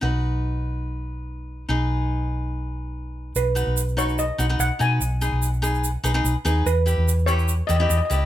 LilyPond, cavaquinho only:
\new Staff \with { instrumentName = "Cavaquinho" } { \time 4/4 \key b \major \tempo 4 = 145 <dis' fis' b'>1 | <dis' gis' b'>1 | r8 <dis' fis' b'>8 r8 <dis' fis' b'>8 r8 <dis' fis' b'>16 <dis' fis' b'>8 r16 <dis' fis' b'>8 | r8 <dis' gis' b'>8 r8 <dis' gis' b'>8 r8 <dis' gis' b'>16 <dis' gis' b'>8 r16 <dis' gis' b'>8 |
r8 <e' g' b'>8 r8 <e' g' b'>8 r8 <e' g' b'>16 <e' g' b'>8 r16 <e' g' b'>8 | }